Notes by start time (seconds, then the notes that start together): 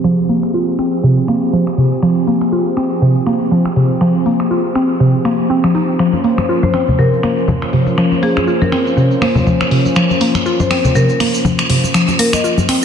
Already playing: F3 C4 G4 G#4
0.04 F3, finger snap
0.29 A#3, open hi-hat
0.43 finger snap
0.54 F4
0.79 C4, finger snap, open hi-hat
1.04 C3
1.28 A#3, finger snap, open hi-hat
1.53 F3
1.67 finger snap
1.78 C3, open hi-hat
2.03 F3, finger snap
2.27 A#3, open hi-hat
2.41 finger snap
2.52 F4
2.77 C4, finger snap, open hi-hat
3.02 C3
3.27 A#3, finger snap, open hi-hat
3.52 F3
3.65 finger snap
3.76 C3, open hi-hat
4.01 F3, finger snap
4.26 A#3, open hi-hat
4.40 finger snap
4.51 F4
4.75 C4, finger snap, open hi-hat
5.00 C3
5.25 A#3, finger snap, open hi-hat
5.50 C4
5.64 F3, finger snap
5.75 D#4, open hi-hat
5.99 F3 A#3 C#4 F4 C5, finger snap, shaker
6.13 muted conga, shaker
6.24 A#3, open hi-hat
6.38 finger snap, muted conga, high conga, shaker
6.49 F4, shaker
6.63 C5, high conga, shaker
6.74 C4, finger snap, open hi-hat, muted conga
6.88 low conga, shaker
6.99 C3 A#4, muted conga, high conga, shaker
7.13 shaker
7.23 A#3, finger snap, open hi-hat, muted conga
7.38 shaker
7.48 F3, high conga, low conga, shaker
7.62 finger snap, muted conga, shaker
7.73 C3, open hi-hat, high conga
7.87 muted conga, shaker
7.98 F3, finger snap, shaker
8.12 muted conga, shaker
8.23 A#3 G#4, open hi-hat
8.36 G#4, finger snap, muted conga, high conga, shaker
8.47 F4, shaker
8.61 A#4, high conga, shaker
8.72 C4, finger snap, open hi-hat, muted conga
8.87 shaker
8.97 C3, muted conga, shaker
9.11 shaker
9.22 A#3 C5, finger snap, open hi-hat, muted conga
9.35 high conga, low conga, shaker
9.47 F3, low conga, shaker
9.61 finger snap, muted conga, shaker
9.71 C3, open hi-hat
9.86 muted conga, shaker
9.95 F3, finger snap, shaker
10.11 muted conga, shaker
10.21 A#3, open hi-hat
10.35 finger snap, muted conga, high conga, shaker
10.46 F4, shaker
10.60 C5, high conga, shaker
10.71 C4, finger snap, open hi-hat, muted conga
10.85 low conga, shaker
10.95 C3 A#4, muted conga, high conga, shaker
11.09 shaker
11.20 A#3, finger snap, open hi-hat, muted conga
11.34 shaker
11.45 F3, high conga, low conga, shaker
11.59 finger snap, muted conga, shaker
11.69 C3, open hi-hat, high conga
11.84 muted conga, shaker
11.94 F3, finger snap, shaker
12.08 muted conga, shaker
12.19 A#3 A#4, open hi-hat
12.33 D#5, finger snap, muted conga, high conga, shaker
12.44 F4, shaker
12.58 high conga, shaker
12.69 C4, finger snap, open hi-hat, muted conga